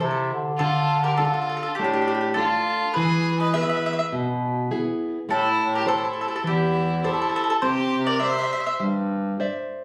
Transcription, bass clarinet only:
0.00 0.29 C3 medium
0.33 0.57 D3 medium
0.60 0.81 D3 medium
0.93 1.49 D3 medium
1.78 2.55 A2 medium
2.96 3.17 E3 medium
3.27 3.83 E3 medium
4.13 4.73 B2 medium
5.29 5.49 A2 medium
5.61 6.16 A2 medium
6.45 7.21 E2 medium
7.62 7.83 C3 medium
7.94 8.50 C3 medium
8.80 9.42 G2 medium

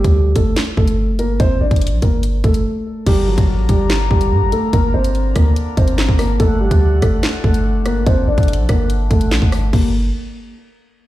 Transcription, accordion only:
3.07 9.69 D3 medium
3.07 6.37 A#3 medium
3.07 6.37 A#4 medium
6.40 9.70 A3 medium
6.40 9.70 F#5 medium
9.73 9.93 D3 medium
9.73 9.93 G3 medium
9.73 9.93 A#3 medium
9.73 9.93 G4 medium

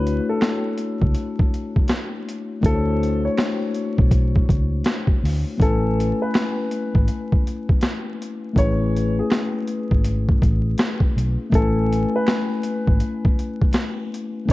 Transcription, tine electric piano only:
0.00 2.58 A3 medium
0.00 2.59 D4 medium
0.00 2.60 E4 medium
0.00 2.61 F#4 medium
0.00 2.62 C#5 medium
2.61 5.55 A3 medium
2.61 5.56 D4 medium
2.61 5.56 E4 medium
2.67 5.57 F#4 medium
2.67 2.74 C5 medium
2.75 5.62 C#5 medium
5.58 8.51 A3 medium
5.58 8.52 C#4 medium
5.58 8.53 E4 medium
5.63 8.55 B4 medium
5.63 8.54 G#5 medium
8.53 11.47 A3 medium
8.53 11.48 C#4 medium
8.53 11.49 E4 medium
8.59 11.50 G#4 medium
8.59 11.51 B4 medium
11.50 14.44 A3 medium
11.50 14.44 C#4 medium
11.50 14.45 E4 medium
11.56 14.47 B4 medium
11.56 14.46 G#5 medium
14.46 14.53 A3 medium
14.46 14.53 C#4 medium
14.46 14.53 E4 medium

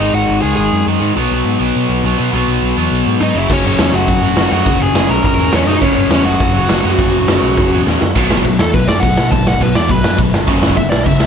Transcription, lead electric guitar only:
0.00 0.11 D#4 medium
0.00 0.12 D#5 loud
0.14 0.41 F#4 medium
0.14 0.41 F#5 medium
0.41 0.54 G#4 medium
0.41 0.56 G#5 loud
0.55 0.84 G#4 medium
0.55 0.84 G#5 loud
3.21 3.34 D#4 medium
3.21 3.36 D#5 medium
3.38 3.50 E4 medium
3.38 3.52 E5 medium
3.51 3.64 C#4 medium
3.51 3.66 C#5 medium
3.67 3.93 C#4 medium
3.67 3.96 C#5 medium
3.94 4.48 F#4 medium
3.94 4.52 F#5 medium
4.52 4.79 F#4 medium
4.52 4.82 F#5 loud
4.81 5.08 G#4 medium
4.81 5.08 G#5 medium
5.10 5.24 A#4 medium
5.10 5.24 A#5 loud
5.26 5.52 A#4 medium
5.26 5.55 A#5 loud
5.55 5.68 C#4 medium
5.55 5.66 C#5 medium
5.66 5.81 D#4 medium
5.66 5.81 D#5 loud
5.82 5.95 C#4 medium
5.82 5.94 C#5 loud
5.95 6.23 C#4 medium
5.95 6.23 C#5 medium
6.25 7.81 F#4 medium
6.25 7.81 F#5 medium
8.61 8.74 A4 medium
8.75 8.88 B4 medium
8.88 9.02 D5 medium
9.00 9.29 F#5 medium
9.31 9.48 A5 medium
9.48 9.61 F#5 medium
9.63 9.75 B4 medium
9.75 9.91 D5 medium
9.91 10.18 B4 loud
10.77 10.90 E5 loud
10.90 11.06 D5 medium
11.06 11.26 E5 medium

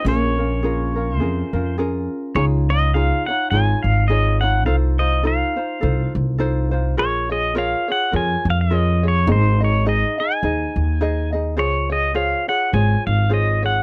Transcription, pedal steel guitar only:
0.08 1.15 C#5 medium
1.15 1.76 C5 medium
2.36 2.45 C#5 loud
2.70 2.95 D#5 medium
2.94 3.28 F5 medium
3.26 3.50 F#5 medium
3.50 3.85 G#5 loud
3.83 4.09 F5 medium
4.08 4.42 D#5 medium
4.41 4.66 F#5 loud
4.66 4.75 F5 loud
4.99 5.25 D#5 medium
5.27 6.12 F5 medium
6.99 7.32 C#5 loud
7.32 7.54 D#5 medium
7.58 7.90 F5 loud
7.92 8.15 F#5 loud
8.16 8.48 G#5 loud
8.50 8.60 F5 medium
8.61 9.06 D#5 loud
9.08 9.31 C#5 medium
9.32 9.63 C5 medium
9.64 9.88 C#5 medium
9.89 10.21 D#5 medium
10.20 11.30 G#5 medium
11.59 11.92 C#5 medium
11.92 12.14 D#5 medium
12.16 12.49 F5 loud
12.49 12.74 F#5 loud
12.74 13.06 G#5 loud
13.07 13.32 F5 loud
13.34 13.65 D#5 medium
13.66 13.83 F#5 loud

